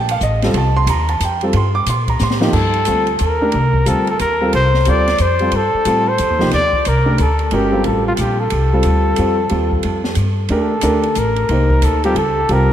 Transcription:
Already playing: upright bass A#1, grand piano G5
0.09 grand piano F5, ride
0.21 upright bass A1, grand piano D#5, hi-hat pedal
0.42 grand piano G3 C4 F4 A4, snare, ride
0.54 upright bass C2, grand piano A5, ride
0.77 grand piano C6
0.87 upright bass D#2, grand piano A#5, hi-hat pedal, ride
1.09 grand piano A5, ride
1.20 upright bass F2, hi-hat pedal, ride
1.24 grand piano G5
1.41 grand piano G3 C4 F4 A4, ride
1.53 upright bass G2, grand piano C6, ride
1.75 grand piano D6
1.86 upright bass A#2, grand piano C6, hi-hat pedal, ride
2.08 grand piano A#5, kick, ride
2.19 upright bass A2, grand piano C6, snare, hi-hat pedal
2.31 snare
2.40 grand piano F3 A#3 D#4 G4, snare
2.53 upright bass G2, trumpet A4, kick, crash
2.74 ride
2.85 upright bass D2, grand piano G3 C4 F4 A4, hi-hat pedal, ride
3.07 ride
3.19 upright bass D#2, trumpet A#4, hi-hat pedal, ride
3.41 grand piano A3 D4 G4 A#4
3.52 upright bass C2, ride
3.74 kick
3.85 upright bass D2, grand piano G3 C4 F4 A4, trumpet A4, hi-hat pedal, ride
4.07 trumpet A4, ride
4.19 upright bass D#2, trumpet A#4, hi-hat pedal, ride
4.41 grand piano G3 C4 F4 A4
4.53 upright bass C2, trumpet C5, ride
4.74 snare
4.85 upright bass D2, grand piano G3 C4 F4 A4, hi-hat pedal, ride
4.89 trumpet D5
5.08 snare, ride
5.18 upright bass F2, trumpet C5, hi-hat pedal, ride
5.39 grand piano G3 C4 F4 A4, ride
5.52 upright bass G2, ride
5.56 trumpet A4
5.74 muted upright bass stroke
5.85 upright bass A2, grand piano G3 C4 F4 A4, hi-hat pedal, ride
6.09 trumpet C5
6.18 upright bass F2, hi-hat pedal, ride
6.30 upright bass D#2
6.39 upright bass C2, grand piano F3 A#3 D#4 G4, snare
6.51 upright bass D#2, trumpet D5, snare, ride
6.73 kick
6.85 upright bass C2, trumpet A#4, hi-hat pedal, ride
7.06 grand piano A3 D4 G4 A#4
7.18 upright bass D2, trumpet A4, hi-hat pedal, ride
7.39 ride
7.51 upright bass G1, grand piano G#3 C#4 F#4 A#4, trumpet G4, ride
7.72 grand piano G3 C4 F4 A4
7.84 upright bass A1, trumpet A4, ride
8.08 trumpet F4
8.17 upright bass A#1, trumpet G4, hi-hat pedal, ride
8.40 trumpet A4
8.50 upright bass C2, ride
8.73 grand piano G3 C4 F4 A4
8.83 upright bass D2, hi-hat pedal, ride
9.16 upright bass F2, grand piano G3 C4 F4 A4, hi-hat pedal, ride
9.49 upright bass D#2, grand piano G3 C4 F4 A4, ride
9.71 kick
9.83 upright bass F2, ride
10.04 snare
10.15 upright bass G2, hi-hat pedal, ride
10.49 upright bass D#2, grand piano A3 D4 G4 A#4, ride
10.54 trumpet A4
10.81 upright bass D2, grand piano A3 D4 G4 A#4, hi-hat pedal, ride
11.03 ride
11.15 upright bass A1, trumpet A#4, hi-hat pedal, ride
11.36 ride
11.49 upright bass C2, grand piano A#3 D#4 G4 C5, ride
11.70 kick
11.82 upright bass D2, trumpet A4, hi-hat pedal, ride
12.04 grand piano G3 C4 F4 A4, trumpet G4, ride
12.15 upright bass C#2, trumpet A4, ride
12.49 upright bass C2, grand piano G3 C4 F4 G4, ride
12.53 trumpet A#4

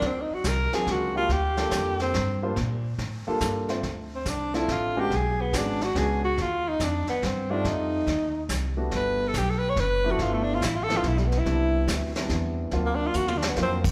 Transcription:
0.01 upright bass D2, brush sweep, kick, snare
0.07 tenor saxophone C4
0.21 tenor saxophone D#4
0.30 muted upright bass stroke
0.34 tenor saxophone F#4
0.44 upright bass C2, tenor saxophone A#4, kick, snare, hi-hat pedal
0.73 grand piano F#3 C4 D4 F4 A#4, tenor saxophone G#4, snare
0.87 upright bass C#2, kick, snare
0.91 tenor saxophone F#4
1.15 grand piano G3 A#3 D4 F4 G4, tenor saxophone F4
1.29 upright bass D2, tenor saxophone G4, brush sweep, kick, snare
1.57 grand piano G3 A#3 D4 F4 A4, snare
1.71 upright bass F2, kick, snare, hi-hat pedal
1.99 tenor saxophone C4, snare
2.14 upright bass G2, kick, snare
2.42 grand piano G3 A#3 D4 F4 C5
2.56 upright bass A#2, brush sweep, kick, snare
2.98 upright bass A2, kick, snare
3.27 grand piano G3 A#3 D4 F4 A4, muted upright bass stroke
3.40 upright bass G2, kick, snare, hi-hat pedal
3.69 grand piano A3 C4 D4 F4 C5, snare
3.83 upright bass D2, brush sweep, kick, snare
4.15 tenor saxophone C4
4.25 upright bass C2, kick, snare, hi-hat pedal
4.29 tenor saxophone D4
4.54 grand piano A3 C4 D4 F4 A4, tenor saxophone E4, snare
4.68 upright bass A1, tenor saxophone F4, kick, snare
4.96 grand piano G#3 B3 C#4 D4 F#4, tenor saxophone G4
5.11 upright bass B1, brush sweep, kick, snare
5.16 tenor saxophone G#4
5.41 tenor saxophone B3
5.53 upright bass G#1, grand piano G#3 B3 C#4 D4 F#4, kick, snare, hi-hat pedal
5.57 tenor saxophone D4
5.81 tenor saxophone F#4, snare
5.95 upright bass C#2, grand piano G#3 B3 C#4 D4 F#4, tenor saxophone G#4, kick, snare
6.24 tenor saxophone F#4
6.38 upright bass D#2, brush sweep, kick, snare
6.42 tenor saxophone F4
6.69 tenor saxophone D#4
6.80 upright bass F2, tenor saxophone D4, kick, snare, hi-hat pedal
7.07 tenor saxophone B3, muted upright bass stroke, snare
7.22 upright bass G2, tenor saxophone C4, kick, snare
7.50 grand piano G3 A3 C4 D#4 F4, tenor saxophone D4
7.64 upright bass F2, tenor saxophone D#4, brush sweep, kick, snare
8.07 upright bass D#2, kick, snare
8.49 upright bass C2, kick, snare, hi-hat pedal
8.77 grand piano G3 A3 B3 D4 F#4
8.91 upright bass G1, brush sweep, kick, snare
8.95 tenor saxophone B4
9.28 tenor saxophone A4
9.34 upright bass B1, kick, snare, hi-hat pedal
9.38 tenor saxophone G4
9.50 tenor saxophone A4
9.58 tenor saxophone B4
9.69 tenor saxophone C#5
9.76 upright bass F#1, tenor saxophone B4, kick, snare
10.04 grand piano F3 A3 B3 D4 E4
10.11 tenor saxophone F#4
10.19 upright bass G1, tenor saxophone F4, brush sweep, kick, snare
10.34 tenor saxophone A3
10.43 tenor saxophone D4
10.55 tenor saxophone F4
10.61 upright bass A1, kick, snare, hi-hat pedal
10.65 tenor saxophone E4
10.76 tenor saxophone F4
10.84 tenor saxophone A4
10.89 grand piano F3 A3 B3 D4 E4, snare
10.97 tenor saxophone F4
11.03 upright bass B1, kick, snare
11.08 tenor saxophone E4
11.18 tenor saxophone G3, snare
11.27 tenor saxophone B3
11.32 snare
11.39 tenor saxophone E4
11.45 upright bass C2, grand piano G3 B3 C4 D4 E4, brush sweep, kick, snare
11.88 upright bass D2, kick, snare, hi-hat pedal
12.15 grand piano G3 B3 C4 D4 E4, snare
12.29 upright bass E2, kick, snare
12.71 upright bass D2, grand piano F#3 A#3 C4 D4 F4, brush sweep, kick, snare
12.85 tenor saxophone A#3
12.95 tenor saxophone D4
13.07 tenor saxophone F4
13.13 upright bass D#2, tenor saxophone F#4, hi-hat pedal
13.28 tenor saxophone F4, high tom
13.38 tenor saxophone D4
13.42 snare
13.49 tenor saxophone B3
13.56 upright bass F2, grand piano F#3 A#3 C4 D4 F4, snare
13.62 tenor saxophone C4
13.84 kick, crash

